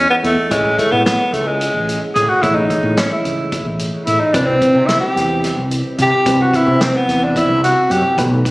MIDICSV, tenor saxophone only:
0, 0, Header, 1, 2, 480
1, 0, Start_track
1, 0, Tempo, 547945
1, 444, Time_signature, 7, 3, 24, 8
1, 7453, End_track
2, 0, Start_track
2, 0, Title_t, "Tenor saxophone"
2, 0, Program_c, 0, 66
2, 88, Note_on_c, 0, 59, 79
2, 141, Note_off_c, 0, 59, 0
2, 213, Note_on_c, 0, 57, 83
2, 452, Note_on_c, 0, 56, 74
2, 465, Note_off_c, 0, 57, 0
2, 689, Note_on_c, 0, 57, 81
2, 702, Note_off_c, 0, 56, 0
2, 801, Note_on_c, 0, 59, 76
2, 814, Note_off_c, 0, 57, 0
2, 914, Note_off_c, 0, 59, 0
2, 919, Note_on_c, 0, 59, 79
2, 1162, Note_on_c, 0, 57, 79
2, 1175, Note_off_c, 0, 59, 0
2, 1291, Note_on_c, 0, 56, 79
2, 1304, Note_off_c, 0, 57, 0
2, 1768, Note_off_c, 0, 56, 0
2, 1883, Note_on_c, 0, 68, 84
2, 2002, Note_on_c, 0, 66, 83
2, 2015, Note_off_c, 0, 68, 0
2, 2119, Note_on_c, 0, 64, 86
2, 2132, Note_off_c, 0, 66, 0
2, 2234, Note_on_c, 0, 63, 81
2, 2247, Note_off_c, 0, 64, 0
2, 2611, Note_on_c, 0, 61, 77
2, 2624, Note_off_c, 0, 63, 0
2, 2727, Note_off_c, 0, 61, 0
2, 2732, Note_on_c, 0, 64, 71
2, 3176, Note_off_c, 0, 64, 0
2, 3556, Note_on_c, 0, 64, 71
2, 3676, Note_on_c, 0, 63, 75
2, 3689, Note_off_c, 0, 64, 0
2, 3791, Note_on_c, 0, 62, 72
2, 3804, Note_off_c, 0, 63, 0
2, 3904, Note_on_c, 0, 60, 77
2, 3917, Note_off_c, 0, 62, 0
2, 4259, Note_on_c, 0, 64, 91
2, 4272, Note_off_c, 0, 60, 0
2, 4375, Note_off_c, 0, 64, 0
2, 4380, Note_on_c, 0, 67, 84
2, 4839, Note_off_c, 0, 67, 0
2, 5271, Note_on_c, 0, 67, 99
2, 5625, Note_on_c, 0, 66, 82
2, 5638, Note_off_c, 0, 67, 0
2, 5740, Note_on_c, 0, 64, 99
2, 5753, Note_off_c, 0, 66, 0
2, 5971, Note_off_c, 0, 64, 0
2, 5976, Note_on_c, 0, 60, 76
2, 6101, Note_on_c, 0, 59, 80
2, 6114, Note_off_c, 0, 60, 0
2, 6342, Note_on_c, 0, 62, 83
2, 6355, Note_off_c, 0, 59, 0
2, 6459, Note_on_c, 0, 64, 86
2, 6472, Note_off_c, 0, 62, 0
2, 6683, Note_off_c, 0, 64, 0
2, 6689, Note_on_c, 0, 66, 78
2, 6937, Note_on_c, 0, 67, 83
2, 6950, Note_off_c, 0, 66, 0
2, 7171, Note_off_c, 0, 67, 0
2, 7453, End_track
0, 0, End_of_file